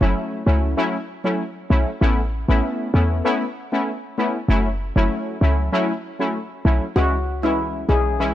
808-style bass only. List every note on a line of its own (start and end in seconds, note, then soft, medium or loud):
0.01 0.14 F#1 medium
0.47 0.75 C#2 loud
1.70 1.85 B1 medium
2.01 2.45 A1 loud
2.48 2.62 A1 medium
2.94 3.22 E2 medium
4.48 4.92 F#1 loud
4.96 5.09 F#1 loud
5.41 5.70 C#2 medium
6.65 6.80 B1 loud
6.96 7.85 C#2 loud
7.89 8.34 B1 medium